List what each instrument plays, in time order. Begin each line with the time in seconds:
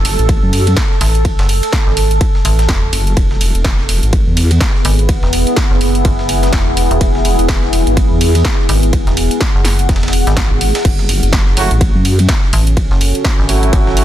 Already playing: ambient pad A4
0.05 wobble bass F#1, snare, open hi-hat, ride
0.19 wobble bass A1, closed hi-hat
0.29 kick, closed hi-hat, ride
0.43 wobble bass F#2
0.53 open hi-hat, ride
0.67 closed hi-hat, ride
0.77 kick, snare, closed hi-hat, ride
0.91 snare
1.01 fm bass A1, snare, open hi-hat, ride
1.15 closed hi-hat
1.25 kick, closed hi-hat, ride
1.39 fm bass F#1, snare, ride
1.49 open hi-hat
1.63 closed hi-hat, ride
1.73 kick, snare, closed hi-hat, ride
1.87 fm bass G#1, snare
1.97 open hi-hat, ride
2.11 closed hi-hat
2.21 kick, closed hi-hat, ride
2.35 snare
2.45 fm bass A1, open hi-hat, ride
2.59 snare, closed hi-hat
2.69 kick, snare, closed hi-hat, ride
2.93 wobble bass F#1, open hi-hat, ride
3.07 closed hi-hat
3.17 wobble bass E1, ambient pad B3, kick, closed hi-hat, ride
3.31 snare
3.39 wobble bass E1, ambient pad G#4, open hi-hat, ride
3.55 wobble bass E1, closed hi-hat
3.65 kick, snare, closed hi-hat, ride
3.79 ambient pad E4, snare
3.89 wobble bass E1, snare, open hi-hat, ride
4.03 wobble bass G#1, closed hi-hat
4.13 kick, closed hi-hat, ride
4.27 wobble bass E2
4.37 open hi-hat, ride
4.51 closed hi-hat, ride
4.55 ambient pad E5
4.61 kick, snare, closed hi-hat, ride
4.75 snare
4.85 fm bass G#1, open hi-hat, ride
4.99 closed hi-hat
5.09 kick, closed hi-hat, ride
5.23 fm bass E1, snare
5.33 open hi-hat, ride
5.47 closed hi-hat
5.56 kick, snare, closed hi-hat, ride
5.71 fm bass F#1, snare
5.81 open hi-hat, ride
5.95 closed hi-hat
6.05 fm bass F#1, kick, closed hi-hat, ride
6.19 snare
6.29 open hi-hat, ride
6.43 snare, closed hi-hat
6.53 fm bass E1, kick, snare, closed hi-hat, ride
6.77 open hi-hat, ride
6.91 fm bass E1, closed hi-hat
7.01 wobble bass E1, kick, closed hi-hat, ride
7.15 snare
7.25 wobble bass E1, open hi-hat, ride
7.39 wobble bass E1, closed hi-hat
7.49 kick, snare, closed hi-hat, ride
7.63 snare
7.73 wobble bass E1, open hi-hat, ride
7.87 wobble bass G#1, closed hi-hat
7.97 kick, closed hi-hat, ride
8.11 wobble bass E2
8.16 ambient pad F#5
8.21 open hi-hat, ride
8.35 closed hi-hat, ride
8.45 kick, snare, closed hi-hat, ride
8.59 snare
8.69 fm bass G#1, open hi-hat, ride
8.83 closed hi-hat
8.93 kick, closed hi-hat, ride
9.07 fm bass E1, snare, closed hi-hat
9.17 open hi-hat, ride
9.31 closed hi-hat
9.41 kick, snare, closed hi-hat, ride
9.55 fm bass F#1, snare
9.65 snare, open hi-hat, ride
9.79 closed hi-hat
9.89 kick, snare, closed hi-hat, ride
9.96 snare, ride
10.03 snare, ride
10.08 snare, ride
10.13 open hi-hat, ride
10.27 fm bass G#1, snare, closed hi-hat
10.37 kick, snare, closed hi-hat, ride
10.51 wobble bass G#1
10.61 open hi-hat, ride
10.75 snare, closed hi-hat, ride
10.85 wobble bass F#1, ambient pad C#4, kick, closed hi-hat, ride, crash
10.99 snare
11.09 wobble bass F#1, open hi-hat, ride
11.23 wobble bass F#1, closed hi-hat
11.33 kick, snare, closed hi-hat, ride
11.47 ambient pad F#4, snare
11.57 wobble bass F#1, horn section F#3 A3 E4 F#4, snare, open hi-hat, ride
11.71 wobble bass A1, closed hi-hat
11.81 kick, closed hi-hat, ride
11.95 wobble bass F#2, ambient pad A4
12.05 open hi-hat, ride
12.19 closed hi-hat, ride
12.29 kick, snare, closed hi-hat, ride
12.43 snare
12.53 fm bass A1, open hi-hat, ride
12.67 closed hi-hat
12.77 kick, closed hi-hat, ride
12.91 fm bass F#1, snare
13.01 ambient pad E5, open hi-hat, ride
13.15 closed hi-hat
13.25 kick, snare, closed hi-hat, ride
13.39 fm bass G#1, snare
13.49 horn section F#3 A3 E4 F#4, open hi-hat, ride
13.63 closed hi-hat
13.73 fm bass G#1, kick, closed hi-hat, ride
13.87 snare
13.97 open hi-hat, ride